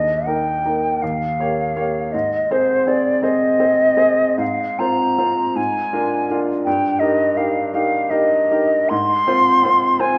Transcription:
0.00 0.26 D#2 soft
0.00 0.29 D#5 soft
0.27 0.61 A#3 soft
0.27 0.61 D#4 soft
0.27 0.62 A#4 soft
0.27 1.04 G5 soft
0.65 0.98 A#3 soft
0.65 0.98 D#4 soft
0.65 0.98 A#4 soft
1.02 1.38 D#2 soft
1.02 2.14 F5 soft
1.40 1.73 A#3 soft
1.40 1.73 G4 soft
1.40 1.73 C#5 soft
1.76 2.10 A#3 soft
1.76 2.10 G4 soft
1.76 2.10 C#5 soft
2.12 2.50 G#2 soft
2.12 2.54 D#5 soft
2.51 2.84 C4 soft
2.51 2.85 G#4 soft
2.51 2.85 C5 soft
2.51 2.89 C5 soft
2.87 3.20 C4 soft
2.87 3.20 G#4 soft
2.87 3.21 C5 soft
2.87 3.24 D5 soft
3.22 3.56 C4 soft
3.22 3.57 G#4 soft
3.22 3.57 C5 soft
3.22 4.38 D#5 medium
3.60 3.95 C4 soft
3.60 3.95 G#4 soft
3.60 3.95 C5 soft
3.97 4.35 C4 soft
3.97 4.35 G#4 soft
3.97 4.36 C5 soft
4.38 4.78 G#2 soft
4.38 4.81 F5 medium
4.79 5.14 C4 soft
4.79 5.15 F4 soft
4.79 5.16 C5 soft
4.79 5.58 A#5 medium
5.18 5.53 C4 soft
5.18 5.53 F4 soft
5.18 5.53 C5 soft
5.55 5.92 G#2 soft
5.55 6.39 G#5 medium
5.93 6.26 D4 soft
5.93 6.27 F4 soft
5.93 6.27 A#4 soft
6.30 6.63 D4 soft
6.30 6.63 F4 soft
6.30 6.63 A#4 soft
6.65 7.01 G2 soft
6.65 7.01 G5 medium
6.99 7.34 D#4 soft
6.99 7.34 G4 soft
6.99 7.34 A#4 soft
6.99 7.38 D#5 medium
7.37 7.70 D#4 soft
7.37 7.70 G4 soft
7.37 7.70 A#4 soft
7.37 7.73 F5 medium
7.74 8.08 D#4 soft
7.74 8.08 G4 soft
7.74 8.08 A#4 soft
7.74 8.12 F5 medium
8.10 8.47 D#4 soft
8.10 8.47 G4 soft
8.10 8.48 A#4 soft
8.10 8.91 D#5 medium
8.51 8.87 D#4 soft
8.51 8.87 G4 soft
8.51 8.88 A#4 soft
8.89 9.27 G#2 medium
8.89 10.02 C6 medium
9.27 9.60 C4 soft
9.27 9.60 F4 soft
9.27 9.60 C5 soft
9.63 9.96 C4 soft
9.63 9.97 F4 soft
9.63 9.97 C5 soft
9.99 10.18 C4 soft
9.99 10.18 F4 soft
9.99 10.18 C5 soft
9.99 10.18 G#5 medium

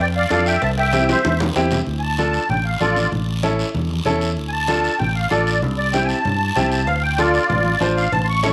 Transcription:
0.00 0.24 F2 medium
0.00 0.08 D5 medium
0.00 0.08 G5 loud
0.16 0.30 D5 medium
0.16 0.30 F5 medium
0.30 0.56 F2 medium
0.30 0.52 D4 medium
0.30 0.53 F4 medium
0.30 0.53 A4 medium
0.30 0.46 D5 medium
0.30 0.47 F5 medium
0.30 cowbell medium
0.30 high conga medium
0.30 low timbale medium
0.30 short guiro medium
0.46 0.62 E5 medium
0.46 0.61 G5 medium
0.46 short guiro medium
0.62 1.12 C2 loud
0.62 0.70 E5 medium
0.62 0.70 A5 medium
0.62 cowbell loud
0.62 high timbale medium
0.62 long guiro medium
0.78 1.08 E5 medium
0.78 1.10 G5 medium
0.78 high timbale medium
0.93 1.15 C4 medium
0.93 1.15 E4 medium
0.93 1.15 G4 medium
0.93 cowbell medium
0.93 high conga loud
0.93 low timbale medium
0.93 short guiro medium
1.09 1.39 C5 medium
1.09 1.39 E5 medium
1.09 high conga medium
1.09 low timbale medium
1.09 short guiro medium
1.24 1.50 E2 medium
1.24 cowbell medium
1.24 low conga medium
1.24 long guiro medium
1.40 low conga loud
1.40 low timbale medium
1.56 1.81 E2 medium
1.56 1.78 C4 medium
1.56 1.78 E4 medium
1.56 1.78 G4 medium
1.56 cowbell medium
1.56 low timbale medium
1.56 short guiro medium
1.71 low conga medium
1.71 low timbale medium
1.71 short guiro medium
1.87 2.37 D2 medium
1.87 high conga soft
1.87 long guiro medium
1.99 2.01 G#5 medium
2.03 2.48 A5 medium
2.18 2.40 D4 medium
2.18 2.40 F4 medium
2.18 2.41 A4 medium
2.18 high conga medium
2.18 short guiro medium
2.33 short guiro medium
2.49 2.74 A1 medium
2.49 2.65 G5 medium
2.49 high conga soft
2.49 low conga medium
2.49 long guiro medium
2.65 2.80 F5 medium
2.80 3.06 A1 medium
2.80 3.03 D4 medium
2.80 3.10 F4 medium
2.80 3.03 F4 medium
2.80 3.03 A4 medium
2.80 3.11 D5 medium
2.80 high conga medium
2.80 short guiro medium
2.96 high conga medium
2.96 short guiro medium
3.12 3.62 A1 medium
3.12 high conga soft
3.12 low conga medium
3.12 long guiro medium
3.43 3.65 C#4 medium
3.43 3.65 E4 medium
3.43 3.65 A4 medium
3.43 high conga medium
3.43 short guiro medium
3.59 short guiro medium
3.75 4.00 E2 medium
3.75 high conga soft
3.75 low conga medium
3.75 long guiro medium
3.90 high conga medium
4.05 4.37 E2 medium
4.05 4.28 C#4 medium
4.05 4.28 E4 medium
4.05 4.28 A4 medium
4.05 high conga medium
4.05 low conga medium
4.05 short guiro medium
4.21 short guiro medium
4.37 4.87 D2 loud
4.37 high conga soft
4.37 long guiro medium
4.48 4.51 G#5 medium
4.53 4.98 A5 loud
4.68 4.90 D4 medium
4.68 4.90 F4 medium
4.68 4.91 A4 medium
4.68 high conga loud
4.68 short guiro medium
4.84 short guiro medium
4.99 5.25 A1 medium
4.99 5.15 G5 medium
4.99 high conga soft
4.99 low conga medium
4.99 long guiro medium
5.16 5.31 F5 medium
5.30 5.63 A1 medium
5.30 5.53 D4 medium
5.30 5.53 F4 medium
5.30 5.53 A4 medium
5.30 5.61 D5 medium
5.30 high conga medium
5.30 short guiro medium
5.47 short guiro medium
5.62 6.13 C2 loud
5.62 high conga soft
5.62 low conga medium
5.62 long guiro medium
5.78 5.93 D5 medium
5.93 6.16 C4 medium
5.93 6.16 E4 medium
5.93 6.16 G4 medium
5.93 6.09 G5 medium
5.93 high conga medium
5.93 short guiro medium
6.04 6.07 G#5 medium
6.09 6.70 A5 medium
6.09 short guiro medium
6.25 6.50 G2 medium
6.25 high conga soft
6.25 low conga medium
6.25 long guiro medium
6.56 6.88 C2 medium
6.56 6.78 C4 medium
6.56 6.78 E4 medium
6.56 6.78 G4 medium
6.56 high conga medium
6.56 low conga medium
6.56 short guiro medium
6.72 6.87 A5 medium
6.72 short guiro medium
6.87 7.38 D2 medium
6.87 7.02 F5 medium
6.87 cowbell medium
6.87 high conga soft
6.87 long guiro medium
7.03 7.18 G5 medium
7.18 7.40 D4 medium
7.18 7.77 F4 medium
7.18 7.40 F4 medium
7.18 7.41 A4 medium
7.18 7.79 D5 medium
7.18 high conga medium
7.18 short guiro medium
7.34 short guiro medium
7.50 7.75 A1 medium
7.50 cowbell medium
7.50 high conga soft
7.50 low conga medium
7.50 long guiro medium
7.65 high conga medium
7.81 8.06 A1 medium
7.81 8.03 D4 medium
7.81 8.03 F4 medium
7.81 8.03 C5 medium
7.81 high conga medium
7.81 low timbale medium
7.81 short guiro medium
7.97 8.12 F5 medium
7.97 short guiro medium
8.12 8.53 A1 loud
8.12 8.28 A5 medium
8.12 cowbell loud
8.12 high conga soft
8.12 low conga medium
8.12 long guiro medium
8.24 8.27 C6 medium
8.29 8.53 C#6 medium
8.43 8.53 C#4 medium
8.43 8.53 E4 medium
8.43 8.53 A4 medium
8.43 high conga loud
8.43 short guiro medium

